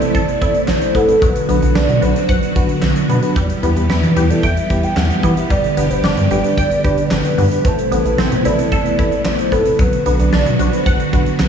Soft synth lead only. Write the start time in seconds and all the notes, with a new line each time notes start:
Already playing: D5
0.68 C5
0.95 A4
1.22 B4
1.49 B4
1.76 D5
2.03 C5
2.30 B4
3.90 B4
4.30 D5
4.43 E5
4.84 G5
4.97 F#5
5.37 E5
5.51 D5
5.91 C5
6.04 D5
7.11 B4
7.65 C5
7.92 B4
8.18 C5
8.45 D5
9.25 C5
9.52 A4
9.79 B4
10.06 B4
10.33 D5
10.59 C5
10.86 B4